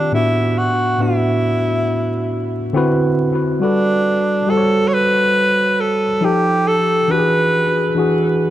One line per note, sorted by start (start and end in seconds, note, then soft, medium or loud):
0.00 0.14 D#3 medium
0.00 0.14 C4 medium
0.00 0.13 D4 loud
0.00 0.14 F4 medium
0.00 0.14 G4 medium
0.12 0.91 A2 medium
0.12 0.92 B3 medium
0.12 0.93 D4 medium
0.12 0.59 E4 medium
0.16 0.93 F#4 medium
0.58 1.03 F#4 medium
0.98 2.58 A2 medium
0.98 2.58 B3 medium
0.98 2.59 D4 medium
0.98 2.74 E4 medium
1.03 2.60 F#4 medium
2.73 3.52 D3 medium
2.73 3.53 C4 medium
2.73 3.54 E4 medium
2.73 3.54 F#4 medium
2.77 3.55 B4 loud
3.60 4.39 G3 medium
3.60 4.51 D4 loud
3.60 4.40 F#4 medium
3.60 4.41 A4 medium
3.64 4.42 B4 medium
4.46 6.05 G3 medium
4.46 6.06 F#4 medium
4.46 6.07 A4 medium
4.46 4.89 A4 medium
4.51 4.57 C5 medium
4.57 6.11 C#5 medium
4.88 4.95 C#5 medium
4.93 5.82 B4 loud
5.80 6.26 A4 medium
6.21 7.00 F3 medium
6.21 7.01 D#4 medium
6.21 7.02 G4 medium
6.21 6.69 G4 loud
6.25 7.02 A4 medium
6.68 7.12 A4 loud
7.08 7.87 E3 medium
7.08 7.88 D4 medium
7.08 7.89 F#4 medium
7.08 7.96 B4 medium
7.12 7.18 G4 medium
7.19 7.93 G#4 medium
7.95 8.50 E3 medium
7.95 8.50 D4 medium
7.95 8.50 F#4 medium
7.99 8.50 G#4 medium